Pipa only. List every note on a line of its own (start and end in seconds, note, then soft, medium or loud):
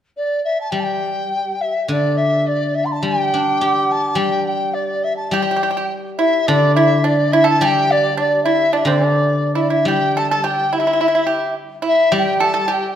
5.33 5.41 G4 medium
5.42 5.49 G4 medium
5.51 5.55 G4 medium
5.56 5.62 G4 medium
5.63 5.69 G4 medium
5.71 5.76 G4 medium
5.77 5.85 G4 medium
6.19 6.46 E4 medium
6.48 6.74 D4 medium
6.76 7.03 E4 medium
7.04 7.31 D4 medium
7.33 7.46 E4 medium
7.44 7.58 A4 medium
7.62 8.13 G4 medium
8.17 8.42 D4 medium
8.45 8.70 E4 medium
8.73 8.85 D4 medium
8.87 9.07 C4 medium
9.07 9.55 D4 medium
9.55 9.69 E4 medium
9.70 9.85 E4 medium
9.88 10.15 G4 medium
10.17 10.30 A4 medium
10.31 10.43 A4 medium
10.44 10.71 G4 medium
10.73 10.79 E4 medium
10.80 10.86 E4 soft
10.87 10.92 E4 medium
10.93 11.00 E4 soft
11.01 11.07 E4 medium
11.08 11.14 E4 soft
11.15 11.23 E4 medium
11.27 11.54 G4 medium
11.82 12.10 E4 medium
12.12 12.39 G4 medium
12.40 12.53 A4 medium
12.54 12.68 A4 medium
12.68 12.95 G4 medium